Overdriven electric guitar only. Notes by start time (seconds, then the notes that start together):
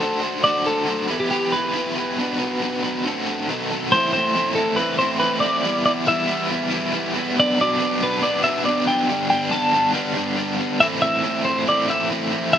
0.00 A3 D4 F#4 C5
0.21 A3 D4 F#4 C5
0.43 D3 F#3 A3 D4 F#4 C5
0.64 A3 D4 F#4 C5
0.86 D3 F#3 A3 D4 F#4 C5
1.08 E3 B3 E4 G4 B4
1.30 E3 B3 E4 G4 B4
1.53 E4 G4 B4
1.74 B3 E4 G4 B4
1.95 E4 G4 B4
2.18 B2 F#3 B3 D4 F#4 B4
2.39 B3 D4 F#4 B4
2.61 B2 F#3 B3 D4 F#4 B4
2.83 B3 D4 F#4 B4
3.05 D3 A3 C4 F#4 A4
3.26 C4 F#4 A4
3.48 B2 D#3 F#3 B3 D#4 A4
3.70 F#3 B3 D#4 A4
3.92 A2 E3 A3 C4 E4
4.13 A3 C4 E4
4.34 A2 E3 A3 C4 E4
4.55 A3 C4 E4
4.77 E3 A3 C4 E4
4.99 A2 E3 A3 C4 E4
5.20 E3 A3 C4 E4
5.42 A3 C4 E4
5.63 E3 G3 B3 E4
5.84 G3 B3 E4
6.05 E3 G3 B3 E4
6.27 G3 B3 E4
6.49 E3 G3 B3 E4
6.70 E3 G3 B3 E4
6.92 E3 G3 B3 E4
7.14 G3 B3 E4
7.36 B2 F#3 B3 D4
7.58 F#3 B3 D4
7.79 B2 F#3 B3 D4
8.00 F#3 B3 D4
8.22 B2 F#3 B3 D4
8.43 B2 F#3 B3 D4
8.64 B2 F#3 B3 D4
8.86 F#3 B3 D4
9.08 G2 D3 G3 B3
9.12 D4
9.30 G3 B3 D4
9.50 G2 D3 G3 B3 D4
9.72 G3 B3 D4
9.93 D3 G3 B3 D4
10.15 G2 D3 G3 B3 D4
10.36 D3 G3 B3 D4
10.57 G3 B3 D4
10.80 A2 E3 A3 C4 E4
11.00 A3 C4 E4
11.23 A2 E3 A3 C4 E4
11.46 A3 C4 E4
11.66 E3 A3 C4 E4
11.88 A2 E3 A3 C4 E4
12.10 E3 A3 C4 E4
12.31 A3 C4 E4
12.52 E3 G3 B3 E4